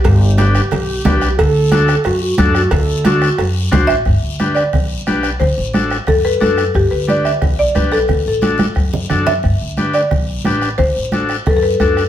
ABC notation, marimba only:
X:1
M:4/4
L:1/16
Q:1/4=179
K:G
V:1 name="Marimba"
z16 | z16 | z12 z2 e2- | e6 d8- d2 |
c8 A2 B2 A3 z | G2 B2 d2 e4 d2 B2 A2- | A2 A4 z8 e2- | e6 d8- d2 |
c8 A/2 B/2 A B2 A3 z |]